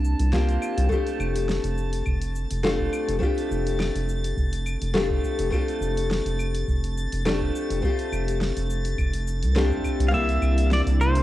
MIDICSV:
0, 0, Header, 1, 7, 480
1, 0, Start_track
1, 0, Key_signature, -1, "major"
1, 0, Tempo, 576923
1, 759, Time_signature, 4, 2, 24, 8
1, 9343, End_track
2, 0, Start_track
2, 0, Title_t, "Synth texture"
2, 0, Program_c, 0, 99
2, 0, Note_on_c, 0, 81, 89
2, 750, Note_on_c, 0, 93, 94
2, 767, Note_off_c, 0, 81, 0
2, 9343, Note_off_c, 0, 93, 0
2, 9343, End_track
3, 0, Start_track
3, 0, Title_t, "Pedal steel guitar"
3, 0, Program_c, 1, 26
3, 8390, Note_on_c, 1, 77, 60
3, 8433, Note_off_c, 1, 77, 0
3, 8436, Note_on_c, 1, 76, 94
3, 8926, Note_off_c, 1, 76, 0
3, 8929, Note_on_c, 1, 74, 82
3, 8993, Note_off_c, 1, 74, 0
3, 9160, Note_on_c, 1, 72, 95
3, 9343, Note_off_c, 1, 72, 0
3, 9343, End_track
4, 0, Start_track
4, 0, Title_t, "Nylon-string guitar"
4, 0, Program_c, 2, 24
4, 0, Note_on_c, 2, 58, 79
4, 0, Note_on_c, 2, 60, 69
4, 0, Note_on_c, 2, 62, 70
4, 0, Note_on_c, 2, 65, 68
4, 0, Note_on_c, 2, 67, 79
4, 244, Note_off_c, 2, 58, 0
4, 249, Note_off_c, 2, 60, 0
4, 255, Note_off_c, 2, 62, 0
4, 257, Note_off_c, 2, 65, 0
4, 261, Note_off_c, 2, 67, 0
4, 270, Note_on_c, 2, 58, 91
4, 278, Note_on_c, 2, 60, 87
4, 283, Note_on_c, 2, 65, 80
4, 285, Note_on_c, 2, 62, 82
4, 288, Note_on_c, 2, 67, 101
4, 728, Note_off_c, 2, 58, 0
4, 732, Note_off_c, 2, 60, 0
4, 734, Note_off_c, 2, 62, 0
4, 735, Note_off_c, 2, 65, 0
4, 737, Note_off_c, 2, 67, 0
4, 740, Note_on_c, 2, 57, 73
4, 748, Note_on_c, 2, 60, 68
4, 757, Note_on_c, 2, 62, 65
4, 764, Note_on_c, 2, 65, 70
4, 771, Note_on_c, 2, 67, 83
4, 2163, Note_off_c, 2, 57, 0
4, 2167, Note_off_c, 2, 60, 0
4, 2171, Note_off_c, 2, 62, 0
4, 2175, Note_off_c, 2, 65, 0
4, 2178, Note_off_c, 2, 67, 0
4, 2190, Note_on_c, 2, 57, 96
4, 2193, Note_on_c, 2, 60, 91
4, 2198, Note_on_c, 2, 62, 79
4, 2201, Note_on_c, 2, 65, 88
4, 2205, Note_on_c, 2, 67, 102
4, 2642, Note_off_c, 2, 57, 0
4, 2650, Note_off_c, 2, 60, 0
4, 2650, Note_off_c, 2, 62, 0
4, 2652, Note_on_c, 2, 57, 78
4, 2653, Note_off_c, 2, 65, 0
4, 2655, Note_off_c, 2, 67, 0
4, 2661, Note_on_c, 2, 60, 73
4, 2669, Note_on_c, 2, 62, 70
4, 2674, Note_on_c, 2, 65, 73
4, 2685, Note_on_c, 2, 67, 86
4, 4079, Note_off_c, 2, 57, 0
4, 4083, Note_off_c, 2, 60, 0
4, 4087, Note_off_c, 2, 62, 0
4, 4090, Note_off_c, 2, 65, 0
4, 4095, Note_off_c, 2, 67, 0
4, 4107, Note_on_c, 2, 57, 94
4, 4110, Note_on_c, 2, 60, 89
4, 4115, Note_on_c, 2, 62, 89
4, 4118, Note_on_c, 2, 65, 83
4, 4123, Note_on_c, 2, 67, 106
4, 4566, Note_off_c, 2, 57, 0
4, 4568, Note_off_c, 2, 60, 0
4, 4570, Note_off_c, 2, 62, 0
4, 4572, Note_off_c, 2, 65, 0
4, 4574, Note_off_c, 2, 67, 0
4, 4580, Note_on_c, 2, 57, 80
4, 4589, Note_on_c, 2, 60, 76
4, 4595, Note_on_c, 2, 62, 72
4, 4603, Note_on_c, 2, 65, 69
4, 4609, Note_on_c, 2, 67, 85
4, 6003, Note_off_c, 2, 57, 0
4, 6007, Note_off_c, 2, 60, 0
4, 6010, Note_off_c, 2, 62, 0
4, 6014, Note_off_c, 2, 65, 0
4, 6017, Note_off_c, 2, 67, 0
4, 6033, Note_on_c, 2, 57, 100
4, 6037, Note_on_c, 2, 60, 85
4, 6038, Note_on_c, 2, 62, 85
4, 6043, Note_on_c, 2, 65, 80
4, 6047, Note_on_c, 2, 67, 105
4, 6490, Note_off_c, 2, 57, 0
4, 6491, Note_off_c, 2, 60, 0
4, 6492, Note_off_c, 2, 62, 0
4, 6494, Note_off_c, 2, 65, 0
4, 6496, Note_off_c, 2, 67, 0
4, 6504, Note_on_c, 2, 57, 76
4, 6511, Note_on_c, 2, 60, 72
4, 6518, Note_on_c, 2, 62, 71
4, 6524, Note_on_c, 2, 65, 70
4, 6530, Note_on_c, 2, 67, 86
4, 7925, Note_off_c, 2, 57, 0
4, 7928, Note_off_c, 2, 60, 0
4, 7932, Note_off_c, 2, 62, 0
4, 7935, Note_off_c, 2, 65, 0
4, 7938, Note_off_c, 2, 67, 0
4, 7948, Note_on_c, 2, 57, 93
4, 7951, Note_on_c, 2, 60, 83
4, 7957, Note_on_c, 2, 62, 87
4, 7959, Note_on_c, 2, 65, 85
4, 7964, Note_on_c, 2, 67, 109
4, 8407, Note_off_c, 2, 57, 0
4, 8409, Note_off_c, 2, 60, 0
4, 8410, Note_off_c, 2, 62, 0
4, 8411, Note_on_c, 2, 58, 84
4, 8412, Note_off_c, 2, 65, 0
4, 8415, Note_off_c, 2, 67, 0
4, 8420, Note_on_c, 2, 60, 73
4, 8429, Note_on_c, 2, 62, 69
4, 8435, Note_on_c, 2, 64, 73
4, 8440, Note_on_c, 2, 67, 89
4, 9343, Note_off_c, 2, 58, 0
4, 9343, Note_off_c, 2, 60, 0
4, 9343, Note_off_c, 2, 62, 0
4, 9343, Note_off_c, 2, 64, 0
4, 9343, Note_off_c, 2, 67, 0
4, 9343, End_track
5, 0, Start_track
5, 0, Title_t, "Ambient pad"
5, 0, Program_c, 3, 92
5, 8438, Note_on_c, 3, 58, 79
5, 8440, Note_on_c, 3, 62, 84
5, 8441, Note_on_c, 3, 48, 86
5, 8441, Note_on_c, 3, 64, 101
5, 9343, Note_off_c, 3, 48, 0
5, 9343, Note_off_c, 3, 58, 0
5, 9343, Note_off_c, 3, 62, 0
5, 9343, Note_off_c, 3, 64, 0
5, 9343, End_track
6, 0, Start_track
6, 0, Title_t, "Analog synth bass"
6, 0, Program_c, 4, 38
6, 0, Note_on_c, 4, 36, 94
6, 123, Note_off_c, 4, 36, 0
6, 162, Note_on_c, 4, 36, 92
6, 479, Note_off_c, 4, 36, 0
6, 646, Note_on_c, 4, 36, 83
6, 735, Note_off_c, 4, 36, 0
6, 994, Note_on_c, 4, 29, 104
6, 1323, Note_off_c, 4, 29, 0
6, 1362, Note_on_c, 4, 29, 83
6, 1679, Note_off_c, 4, 29, 0
6, 1716, Note_on_c, 4, 29, 77
6, 2044, Note_off_c, 4, 29, 0
6, 2090, Note_on_c, 4, 29, 77
6, 2403, Note_off_c, 4, 29, 0
6, 2565, Note_on_c, 4, 29, 89
6, 2655, Note_off_c, 4, 29, 0
6, 2922, Note_on_c, 4, 29, 104
6, 3247, Note_off_c, 4, 29, 0
6, 3288, Note_on_c, 4, 29, 83
6, 3602, Note_off_c, 4, 29, 0
6, 3635, Note_on_c, 4, 29, 77
6, 3963, Note_off_c, 4, 29, 0
6, 4008, Note_on_c, 4, 29, 79
6, 4322, Note_off_c, 4, 29, 0
6, 4485, Note_on_c, 4, 29, 94
6, 4574, Note_off_c, 4, 29, 0
6, 4832, Note_on_c, 4, 29, 97
6, 5162, Note_off_c, 4, 29, 0
6, 5205, Note_on_c, 4, 29, 80
6, 5521, Note_off_c, 4, 29, 0
6, 5556, Note_on_c, 4, 29, 79
6, 5884, Note_off_c, 4, 29, 0
6, 5930, Note_on_c, 4, 29, 85
6, 6243, Note_off_c, 4, 29, 0
6, 6410, Note_on_c, 4, 29, 96
6, 6497, Note_off_c, 4, 29, 0
6, 6760, Note_on_c, 4, 29, 100
6, 7086, Note_off_c, 4, 29, 0
6, 7129, Note_on_c, 4, 29, 80
6, 7443, Note_off_c, 4, 29, 0
6, 7472, Note_on_c, 4, 29, 93
6, 7842, Note_on_c, 4, 36, 87
6, 7854, Note_off_c, 4, 29, 0
6, 8159, Note_off_c, 4, 36, 0
6, 8319, Note_on_c, 4, 36, 93
6, 8637, Note_off_c, 4, 36, 0
6, 8670, Note_on_c, 4, 36, 95
6, 9001, Note_off_c, 4, 36, 0
6, 9043, Note_on_c, 4, 36, 91
6, 9343, Note_off_c, 4, 36, 0
6, 9343, End_track
7, 0, Start_track
7, 0, Title_t, "Drums"
7, 38, Note_on_c, 9, 69, 74
7, 121, Note_off_c, 9, 69, 0
7, 162, Note_on_c, 9, 46, 52
7, 165, Note_on_c, 9, 69, 32
7, 245, Note_off_c, 9, 46, 0
7, 248, Note_off_c, 9, 69, 0
7, 273, Note_on_c, 9, 38, 88
7, 275, Note_on_c, 9, 36, 101
7, 277, Note_on_c, 9, 69, 42
7, 356, Note_off_c, 9, 38, 0
7, 358, Note_off_c, 9, 36, 0
7, 360, Note_off_c, 9, 69, 0
7, 404, Note_on_c, 9, 46, 30
7, 408, Note_on_c, 9, 69, 30
7, 487, Note_off_c, 9, 46, 0
7, 491, Note_off_c, 9, 69, 0
7, 515, Note_on_c, 9, 75, 74
7, 519, Note_on_c, 9, 69, 72
7, 599, Note_off_c, 9, 75, 0
7, 602, Note_off_c, 9, 69, 0
7, 646, Note_on_c, 9, 46, 61
7, 650, Note_on_c, 9, 69, 33
7, 729, Note_off_c, 9, 46, 0
7, 733, Note_off_c, 9, 69, 0
7, 754, Note_on_c, 9, 36, 109
7, 764, Note_on_c, 9, 69, 41
7, 837, Note_off_c, 9, 36, 0
7, 847, Note_off_c, 9, 69, 0
7, 887, Note_on_c, 9, 46, 33
7, 891, Note_on_c, 9, 69, 31
7, 970, Note_off_c, 9, 46, 0
7, 974, Note_off_c, 9, 69, 0
7, 998, Note_on_c, 9, 75, 79
7, 1001, Note_on_c, 9, 69, 73
7, 1081, Note_off_c, 9, 75, 0
7, 1085, Note_off_c, 9, 69, 0
7, 1128, Note_on_c, 9, 46, 58
7, 1132, Note_on_c, 9, 69, 32
7, 1211, Note_off_c, 9, 46, 0
7, 1215, Note_off_c, 9, 69, 0
7, 1239, Note_on_c, 9, 38, 90
7, 1243, Note_on_c, 9, 69, 43
7, 1322, Note_off_c, 9, 38, 0
7, 1326, Note_off_c, 9, 69, 0
7, 1364, Note_on_c, 9, 46, 50
7, 1367, Note_on_c, 9, 69, 32
7, 1447, Note_off_c, 9, 46, 0
7, 1451, Note_off_c, 9, 69, 0
7, 1477, Note_on_c, 9, 69, 71
7, 1561, Note_off_c, 9, 69, 0
7, 1604, Note_on_c, 9, 46, 55
7, 1608, Note_on_c, 9, 69, 33
7, 1687, Note_off_c, 9, 46, 0
7, 1691, Note_off_c, 9, 69, 0
7, 1712, Note_on_c, 9, 75, 75
7, 1715, Note_on_c, 9, 36, 107
7, 1716, Note_on_c, 9, 69, 44
7, 1795, Note_off_c, 9, 75, 0
7, 1798, Note_off_c, 9, 36, 0
7, 1799, Note_off_c, 9, 69, 0
7, 1843, Note_on_c, 9, 46, 51
7, 1847, Note_on_c, 9, 69, 32
7, 1926, Note_off_c, 9, 46, 0
7, 1930, Note_off_c, 9, 69, 0
7, 1960, Note_on_c, 9, 69, 73
7, 2043, Note_off_c, 9, 69, 0
7, 2085, Note_on_c, 9, 46, 57
7, 2088, Note_on_c, 9, 69, 34
7, 2168, Note_off_c, 9, 46, 0
7, 2172, Note_off_c, 9, 69, 0
7, 2198, Note_on_c, 9, 38, 100
7, 2202, Note_on_c, 9, 69, 44
7, 2282, Note_off_c, 9, 38, 0
7, 2285, Note_off_c, 9, 69, 0
7, 2324, Note_on_c, 9, 36, 62
7, 2407, Note_off_c, 9, 36, 0
7, 2436, Note_on_c, 9, 75, 80
7, 2440, Note_on_c, 9, 69, 73
7, 2520, Note_off_c, 9, 75, 0
7, 2523, Note_off_c, 9, 69, 0
7, 2568, Note_on_c, 9, 46, 58
7, 2571, Note_on_c, 9, 69, 35
7, 2651, Note_off_c, 9, 46, 0
7, 2654, Note_off_c, 9, 69, 0
7, 2675, Note_on_c, 9, 36, 122
7, 2682, Note_on_c, 9, 69, 43
7, 2758, Note_off_c, 9, 36, 0
7, 2765, Note_off_c, 9, 69, 0
7, 2811, Note_on_c, 9, 46, 32
7, 2815, Note_on_c, 9, 69, 35
7, 2894, Note_off_c, 9, 46, 0
7, 2898, Note_off_c, 9, 69, 0
7, 2925, Note_on_c, 9, 69, 80
7, 3009, Note_off_c, 9, 69, 0
7, 3052, Note_on_c, 9, 46, 52
7, 3055, Note_on_c, 9, 69, 36
7, 3135, Note_off_c, 9, 46, 0
7, 3138, Note_off_c, 9, 69, 0
7, 3161, Note_on_c, 9, 38, 94
7, 3161, Note_on_c, 9, 75, 69
7, 3165, Note_on_c, 9, 69, 41
7, 3244, Note_off_c, 9, 38, 0
7, 3244, Note_off_c, 9, 75, 0
7, 3248, Note_off_c, 9, 69, 0
7, 3291, Note_on_c, 9, 46, 43
7, 3295, Note_on_c, 9, 69, 33
7, 3374, Note_off_c, 9, 46, 0
7, 3378, Note_off_c, 9, 69, 0
7, 3401, Note_on_c, 9, 69, 67
7, 3484, Note_off_c, 9, 69, 0
7, 3530, Note_on_c, 9, 46, 57
7, 3534, Note_on_c, 9, 69, 37
7, 3613, Note_off_c, 9, 46, 0
7, 3617, Note_off_c, 9, 69, 0
7, 3635, Note_on_c, 9, 36, 114
7, 3641, Note_on_c, 9, 69, 42
7, 3718, Note_off_c, 9, 36, 0
7, 3725, Note_off_c, 9, 69, 0
7, 3767, Note_on_c, 9, 46, 51
7, 3770, Note_on_c, 9, 69, 37
7, 3850, Note_off_c, 9, 46, 0
7, 3853, Note_off_c, 9, 69, 0
7, 3877, Note_on_c, 9, 75, 75
7, 3881, Note_on_c, 9, 69, 83
7, 3960, Note_off_c, 9, 75, 0
7, 3964, Note_off_c, 9, 69, 0
7, 4007, Note_on_c, 9, 46, 55
7, 4011, Note_on_c, 9, 69, 35
7, 4090, Note_off_c, 9, 46, 0
7, 4094, Note_off_c, 9, 69, 0
7, 4116, Note_on_c, 9, 38, 98
7, 4119, Note_on_c, 9, 69, 43
7, 4199, Note_off_c, 9, 38, 0
7, 4203, Note_off_c, 9, 69, 0
7, 4244, Note_on_c, 9, 36, 109
7, 4327, Note_off_c, 9, 36, 0
7, 4354, Note_on_c, 9, 36, 57
7, 4361, Note_on_c, 9, 69, 82
7, 4437, Note_off_c, 9, 36, 0
7, 4444, Note_off_c, 9, 69, 0
7, 4483, Note_on_c, 9, 46, 59
7, 4486, Note_on_c, 9, 69, 38
7, 4566, Note_off_c, 9, 46, 0
7, 4570, Note_off_c, 9, 69, 0
7, 4594, Note_on_c, 9, 36, 120
7, 4596, Note_on_c, 9, 75, 73
7, 4599, Note_on_c, 9, 69, 46
7, 4677, Note_off_c, 9, 36, 0
7, 4679, Note_off_c, 9, 75, 0
7, 4683, Note_off_c, 9, 69, 0
7, 4728, Note_on_c, 9, 46, 30
7, 4732, Note_on_c, 9, 69, 33
7, 4811, Note_off_c, 9, 46, 0
7, 4815, Note_off_c, 9, 69, 0
7, 4843, Note_on_c, 9, 69, 74
7, 4926, Note_off_c, 9, 69, 0
7, 4970, Note_on_c, 9, 46, 53
7, 4973, Note_on_c, 9, 69, 34
7, 5053, Note_off_c, 9, 46, 0
7, 5057, Note_off_c, 9, 69, 0
7, 5081, Note_on_c, 9, 38, 93
7, 5085, Note_on_c, 9, 69, 42
7, 5165, Note_off_c, 9, 38, 0
7, 5168, Note_off_c, 9, 69, 0
7, 5209, Note_on_c, 9, 46, 45
7, 5213, Note_on_c, 9, 69, 33
7, 5292, Note_off_c, 9, 46, 0
7, 5296, Note_off_c, 9, 69, 0
7, 5317, Note_on_c, 9, 75, 61
7, 5321, Note_on_c, 9, 69, 76
7, 5400, Note_off_c, 9, 75, 0
7, 5404, Note_off_c, 9, 69, 0
7, 5446, Note_on_c, 9, 46, 51
7, 5450, Note_on_c, 9, 69, 35
7, 5529, Note_off_c, 9, 46, 0
7, 5533, Note_off_c, 9, 69, 0
7, 5556, Note_on_c, 9, 36, 118
7, 5562, Note_on_c, 9, 69, 45
7, 5639, Note_off_c, 9, 36, 0
7, 5645, Note_off_c, 9, 69, 0
7, 5690, Note_on_c, 9, 46, 46
7, 5694, Note_on_c, 9, 69, 35
7, 5773, Note_off_c, 9, 46, 0
7, 5777, Note_off_c, 9, 69, 0
7, 5803, Note_on_c, 9, 69, 82
7, 5886, Note_off_c, 9, 69, 0
7, 5927, Note_on_c, 9, 46, 54
7, 5931, Note_on_c, 9, 69, 33
7, 6010, Note_off_c, 9, 46, 0
7, 6014, Note_off_c, 9, 69, 0
7, 6043, Note_on_c, 9, 38, 102
7, 6043, Note_on_c, 9, 75, 75
7, 6046, Note_on_c, 9, 69, 42
7, 6126, Note_off_c, 9, 38, 0
7, 6126, Note_off_c, 9, 75, 0
7, 6130, Note_off_c, 9, 69, 0
7, 6166, Note_on_c, 9, 36, 67
7, 6249, Note_off_c, 9, 36, 0
7, 6285, Note_on_c, 9, 69, 79
7, 6368, Note_off_c, 9, 69, 0
7, 6410, Note_on_c, 9, 46, 58
7, 6414, Note_on_c, 9, 69, 38
7, 6493, Note_off_c, 9, 46, 0
7, 6497, Note_off_c, 9, 69, 0
7, 6516, Note_on_c, 9, 36, 126
7, 6523, Note_on_c, 9, 69, 43
7, 6600, Note_off_c, 9, 36, 0
7, 6607, Note_off_c, 9, 69, 0
7, 6646, Note_on_c, 9, 46, 33
7, 6650, Note_on_c, 9, 69, 33
7, 6730, Note_off_c, 9, 46, 0
7, 6733, Note_off_c, 9, 69, 0
7, 6760, Note_on_c, 9, 75, 74
7, 6763, Note_on_c, 9, 69, 77
7, 6843, Note_off_c, 9, 75, 0
7, 6846, Note_off_c, 9, 69, 0
7, 6889, Note_on_c, 9, 46, 55
7, 6893, Note_on_c, 9, 69, 35
7, 6973, Note_off_c, 9, 46, 0
7, 6976, Note_off_c, 9, 69, 0
7, 6998, Note_on_c, 9, 38, 89
7, 7001, Note_on_c, 9, 69, 44
7, 7081, Note_off_c, 9, 38, 0
7, 7085, Note_off_c, 9, 69, 0
7, 7127, Note_on_c, 9, 46, 43
7, 7131, Note_on_c, 9, 69, 34
7, 7211, Note_off_c, 9, 46, 0
7, 7214, Note_off_c, 9, 69, 0
7, 7239, Note_on_c, 9, 69, 76
7, 7322, Note_off_c, 9, 69, 0
7, 7362, Note_on_c, 9, 46, 53
7, 7366, Note_on_c, 9, 69, 34
7, 7445, Note_off_c, 9, 46, 0
7, 7449, Note_off_c, 9, 69, 0
7, 7474, Note_on_c, 9, 75, 80
7, 7476, Note_on_c, 9, 36, 114
7, 7477, Note_on_c, 9, 69, 45
7, 7557, Note_off_c, 9, 75, 0
7, 7559, Note_off_c, 9, 36, 0
7, 7560, Note_off_c, 9, 69, 0
7, 7600, Note_on_c, 9, 46, 48
7, 7603, Note_on_c, 9, 69, 36
7, 7683, Note_off_c, 9, 46, 0
7, 7687, Note_off_c, 9, 69, 0
7, 7716, Note_on_c, 9, 69, 81
7, 7799, Note_off_c, 9, 69, 0
7, 7842, Note_on_c, 9, 46, 55
7, 7846, Note_on_c, 9, 69, 34
7, 7925, Note_off_c, 9, 46, 0
7, 7929, Note_off_c, 9, 69, 0
7, 7952, Note_on_c, 9, 38, 95
7, 7955, Note_on_c, 9, 69, 42
7, 8035, Note_off_c, 9, 38, 0
7, 8039, Note_off_c, 9, 69, 0
7, 8085, Note_on_c, 9, 36, 108
7, 8088, Note_on_c, 9, 69, 33
7, 8168, Note_off_c, 9, 36, 0
7, 8171, Note_off_c, 9, 69, 0
7, 8191, Note_on_c, 9, 75, 76
7, 8194, Note_on_c, 9, 69, 86
7, 8195, Note_on_c, 9, 36, 64
7, 8274, Note_off_c, 9, 75, 0
7, 8278, Note_off_c, 9, 36, 0
7, 8278, Note_off_c, 9, 69, 0
7, 8323, Note_on_c, 9, 46, 56
7, 8326, Note_on_c, 9, 69, 36
7, 8406, Note_off_c, 9, 46, 0
7, 8410, Note_off_c, 9, 69, 0
7, 8434, Note_on_c, 9, 69, 42
7, 8435, Note_on_c, 9, 36, 116
7, 8517, Note_off_c, 9, 69, 0
7, 8518, Note_off_c, 9, 36, 0
7, 8560, Note_on_c, 9, 46, 31
7, 8564, Note_on_c, 9, 69, 33
7, 8643, Note_off_c, 9, 46, 0
7, 8647, Note_off_c, 9, 69, 0
7, 8669, Note_on_c, 9, 75, 76
7, 8673, Note_on_c, 9, 69, 74
7, 8752, Note_off_c, 9, 75, 0
7, 8756, Note_off_c, 9, 69, 0
7, 8801, Note_on_c, 9, 46, 54
7, 8805, Note_on_c, 9, 69, 34
7, 8884, Note_off_c, 9, 46, 0
7, 8888, Note_off_c, 9, 69, 0
7, 8911, Note_on_c, 9, 38, 93
7, 8915, Note_on_c, 9, 69, 41
7, 8995, Note_off_c, 9, 38, 0
7, 8998, Note_off_c, 9, 69, 0
7, 9043, Note_on_c, 9, 46, 44
7, 9047, Note_on_c, 9, 69, 33
7, 9126, Note_off_c, 9, 46, 0
7, 9130, Note_off_c, 9, 69, 0
7, 9159, Note_on_c, 9, 69, 64
7, 9243, Note_off_c, 9, 69, 0
7, 9281, Note_on_c, 9, 46, 55
7, 9285, Note_on_c, 9, 69, 33
7, 9343, Note_off_c, 9, 46, 0
7, 9343, Note_off_c, 9, 69, 0
7, 9343, End_track
0, 0, End_of_file